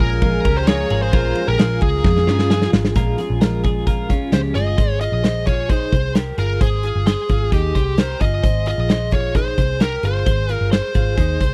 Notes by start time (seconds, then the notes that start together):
Already playing: F3 G#3 C#4 F4 G#4 A#4 G#5 A#5
0.00 A#1 A#4, kick
0.22 A#2 F3 G#3 C#4 F4 A#4, kick, ride
0.45 C#2 G#3 C#4 F4 G4 A#4, kick, ride
0.57 C5
0.67 F3 G#3 C#4 F4 G#4 C#5, snare, ride
0.90 G#1 F4 G#4, ride
1.02 C5
1.12 A#1 A#2 F3 G#3 C#4 F4 A#4, kick, ride
1.35 G#3 C#4 F4, ride
1.47 A#1 G4 A#4
1.58 A#1 F4 G#4, snare, ride
1.81 C#2 G#4, kick, ride
2.04 F2 A#2 F3 G#3 C#4 F4, kick, snare
2.17 snare
2.27 G2 G#3 C#4 F4, snare
2.39 snare
2.50 F3 G#3 C#4 F4 G#4, snare
2.62 snare
2.73 G#1, snare
2.85 snare
2.95 A#1 A#2 F3 G#3 C#4 F4 A#4, kick, closed hi-hat
3.17 G#3 C#4 F4 G#4, closed hi-hat
3.30 A#1
3.40 F3 G#3 C#4 F4 A#4, snare, closed hi-hat
3.64 F4 G#4, kick, closed hi-hat
3.87 F4 A#4, kick, closed hi-hat
4.09 G#3 C#4 F4, kick, closed hi-hat
4.32 C#2 F3 G#3 C#4 F4 G4 C5, snare, closed hi-hat
4.55 G1 G#3 C#4 F4 G#4 D#5, closed hi-hat
4.78 G#1 G#4 C5, kick, closed hi-hat
5.00 F4 G#4 D#5, closed hi-hat
5.12 A#1
5.24 G#4 C5, snare, closed hi-hat
5.46 F4 G#4 C#5, kick, closed hi-hat
5.69 D#4 G#4 C5, kick, closed hi-hat
5.92 C2 G#4 C5, kick, closed hi-hat
6.15 G4 A#4, snare, closed hi-hat
6.38 G1 F4 G#4 A#4, closed hi-hat
6.61 G#1 G#4 C5, kick, closed hi-hat
6.83 F4 G#4, closed hi-hat
6.95 G1
7.07 G#4 C5, snare, closed hi-hat
7.29 G#1 F4 G#4, kick, closed hi-hat
7.52 D#2 D#4 G4 G#4, kick, closed hi-hat
7.75 C2 G#4 C5, kick, closed hi-hat
7.98 G4 A#4 C5, snare, closed hi-hat
8.20 G1 F4 G#4 D#5, kick, closed hi-hat
8.43 G#1 G#4 C5, kick, closed hi-hat
8.66 F4 G#4 D#5, closed hi-hat
8.78 A#1
8.89 G#4 C5, snare, closed hi-hat
9.11 F4 G#4 C#5, kick, closed hi-hat
9.35 D#4 G#4 C5, kick, closed hi-hat
9.58 C2 G#4 C5, kick, closed hi-hat
9.80 G4 A#4, snare, closed hi-hat
10.03 G1 F4 G#4 C5, closed hi-hat
10.26 G#1 G#4 C5, kick, closed hi-hat
10.49 F4 G#4, closed hi-hat
10.53 A#4
10.61 G1
10.71 G#4 C5, snare, closed hi-hat
10.94 G#1 F4 G#4, kick, closed hi-hat
11.17 D#2 D#4 G#4, kick, closed hi-hat
11.40 C2 G#4 C5, kick, closed hi-hat